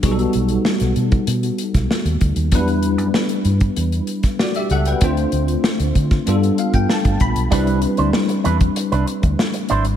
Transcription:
<<
  \new Staff \with { instrumentName = "Tine electric piano" } { \time 4/4 \key e \minor \tempo 4 = 96 << { r1 | r2. <fis' d''>16 <g' e''>16 <a' fis''>16 <b' g''>16~ | <b' g''>16 r2 r16 f''16 g''16 a''8 b''8 | r1 | } \\ { <g b dis' fis' aes' a'>1 | <fis g b d' e' b'>2. r4 | <a c' d' f' c''>2 <g b d' f' a'>2 | <g c' d' e' b'>1 | } >> }
  \new Staff \with { instrumentName = "Clean electric guitar" } { \time 4/4 \key e \minor r1 | r1 | r1 | <d' e' b'>8 r16 <d' e' c''>16 r8 <d' e' b'>16 r8 <d' e' b'>16 r4 <d' e' c''>16 r16 | }
  \new Staff \with { instrumentName = "Fingered electric bass" } { \clef bass \time 4/4 \key e \minor b,,8 b,,8 r16 b,,16 b,8 b,8 r16 b,,16 r16 dis,16 d,16 dis,16 | e,8. fis,16 r8 g,8 e,8 r4 cis,8 | d,8 d,8 r16 d,16 d8 g,8 r16 g,16 r16 g,,16 bes,,16 b,,16 | c,8. d,16 r8 e,8 r16 c,16 r16 d,16 r8 aes,,8 | }
  \new DrumStaff \with { instrumentName = "Drums" } \drummode { \time 4/4 <hh bd>16 hh16 hh16 hh16 sn16 <hh sn>16 hh16 <hh bd>16 hh16 hh16 hh16 <hh bd sn>16 sn16 hh16 <hh bd>16 hh16 | <hh bd>16 hh16 hh16 hh16 sn16 hh16 hh16 <hh bd>16 hh16 hh16 hh16 <hh bd sn>16 sn16 hh16 hh16 hh16 | <hh bd>16 hh16 hh16 hh16 sn16 hh16 <hh bd>16 <hh bd sn>16 hh16 hh16 hh16 <hh bd>16 sn16 <hh bd>16 <hh bd>16 hh16 | <hh bd>16 hh16 hh16 hh16 sn16 hh16 hh16 <hh bd>16 hh16 hh16 hh16 <hh bd>16 sn16 hh16 hh16 hh16 | }
>>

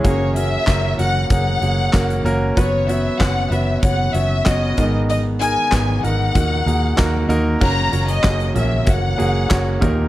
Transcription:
<<
  \new Staff \with { instrumentName = "Violin section" } { \time 4/4 \key fis \mixolydian \tempo 4 = 95 cis''8 e''4 fis''8 fis''4. r8 | cis''8 e''8 fis''8 e''8 fis''8 e''8 dis''8. r16 | dis''8 gis''4 fis''2 r8 | ais''8. dis''8. e''8 fis''4. r8 | }
  \new Staff \with { instrumentName = "Grand piano" } { \time 4/4 \key fis \mixolydian <ais cis' fis' gis'>8 <ais cis' fis' ais'>8 <ais cis' fis' ais'>8 <ais cis' fis' ais'>8 <ais cis' fis' gis'>8 <ais cis' fis' gis'>8 <ais cis' fis' ais'>8 <ais cis' fis' ais'>8 | <b cis' fis' b'>8 <b cis' fis' cis''>8 <b cis' fis' b'>8 <b cis' fis' b'>8 <b cis' fis' cis''>8 <b cis' fis' cis''>8 <b cis' fis' cis''>8 <b dis' gis' ais'>8~ | <b dis' gis' ais'>8 <b dis' gis' ais'>8 <b dis' gis' b'>8 <b dis' gis' ais'>8 <ais dis' fis' ais'>8 <ais dis' fis' gis'>8 <ais dis' fis' ais'>8 <ais dis' fis' ais'>8 | <ais cis' fis' ais'>8 <ais cis' fis' cis''>8 <ais cis' fis' gis'>8 <ais cis' fis' ais'>8 <ais cis' fis' cis''>8 <ais cis' fis' gis'>8 <ais cis' fis' cis''>8 <ais dis' g' ais'>8 | }
  \new Staff \with { instrumentName = "Grand piano" } { \clef bass \time 4/4 \key fis \mixolydian cis4. r2 r8 | fis4. r2 <gis, dis>8~ | <gis, dis>4 r4 ais,4. r8 | cis4. r2 ais,8 | }
  \new Staff \with { instrumentName = "Fingered electric bass" } { \clef bass \time 4/4 \key fis \mixolydian fis,,4 fis,,8 fis,,8 fis,,8 fis,,8 fis,,8 fis,,8 | fis,,4 fis,,8 fis,,8 fis,,8 fis,,8 fis,,8 gis,,8~ | gis,,4 gis,,8 gis,,8 dis,8 dis,8 dis,8 dis,8 | fis,,8 fis,,8 fis,,8 ais,,8 fis,,8 fis,,8 fis,,8 dis,8 | }
  \new DrumStaff \with { instrumentName = "Drums" } \drummode { \time 4/4 <hh bd>8 hh8 <hc hh bd sn>8 hh8 <hh bd>8 hh8 <hc hh bd sn>16 hh16 hh8 | <hh bd>8 hh8 <hc hh bd sn>8 hh8 <hh bd>8 hh8 <hc hh bd sn>8 <hh bd>8 | hh8 hh8 <hc hh bd sn>8 hh8 <hh bd>8 hh8 <hc hh bd sn>8 hh8 | <cymc bd>8 hh16 hh16 <hc hh bd sn>16 hh16 <hh tomfh>8 <hh bd>8 hh8 <hc hh bd sn>8 <hh bd tomfh>8 | }
>>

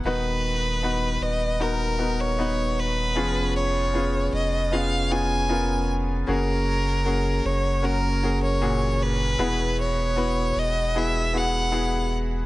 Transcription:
<<
  \new Staff \with { instrumentName = "Violin" } { \time 4/4 \key fis \major \tempo 4 = 77 b'4. dis''8 ais'8. cis''8. b'8~ | b'8 cis''4 dis''8 eis''8 gis''4 r8 | ais'4. cis''8 ais'8. cis''8. b'8~ | b'8 cis''4 dis''8 e''8 fis''4 r8 | }
  \new Staff \with { instrumentName = "Grand piano" } { \time 4/4 \key fis \major <b dis' fis' b'>4 <b dis' fis' b'>4 <b dis' fis' ais'>8 <b dis' fis' ais'>8 <b dis' fis' b'>4 | <b cis' eis' gis'>4 <b cis' eis' gis'>4 <b cis' eis' gis'>8 <b cis' eis' gis'>8 <b cis' eis' ais'>4 | <ais cis' fis' gis'>4 <ais cis' fis' gis'>4 <ais cis' fis' ais'>8 <ais cis' fis' gis'>8 <ais, cis' fis' gis'>4 | <b e' fis' gis'>4 <b e' fis' b'>4 <b e' fis' gis'>8 <b e' fis' gis'>8 <b e' fis' gis'>4 | }
  \new Staff \with { instrumentName = "Grand piano" } { \clef bass \time 4/4 \key fis \major dis4. r2 r8 | eis4. r2 r8 | cis4. r2 r8 | b,4. r2 r8 | }
  \new Staff \with { instrumentName = "Sub bass" } { \clef bass \time 4/4 \key fis \major dis,,4. dis,,2~ dis,,8 | eis,,4. eis,,2~ eis,,8 | fis,,4. fis,,2~ fis,,8 | e,,4. e,,2~ e,,8 | }
>>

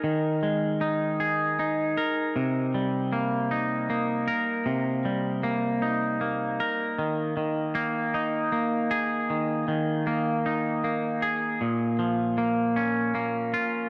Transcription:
\new Staff \with { instrumentName = "Clean electric guitar" } { \time 6/8 \key ees \mixolydian \tempo 4. = 52 <ees ees' aes' bes'>8 aes8 ees'8 aes'8 ees'8 bes'8 | c8 g8 bes8 ees'8 bes8 bes'8 | c8 g8 bes8 ees'8 bes8 bes'8 | ees8 ees8 bes8 ees'8 bes8 aes'8 |
ees8 ees8 bes8 ees'8 bes8 aes'8 | bes,8 f8 bes8 des'8 bes8 f'8 | }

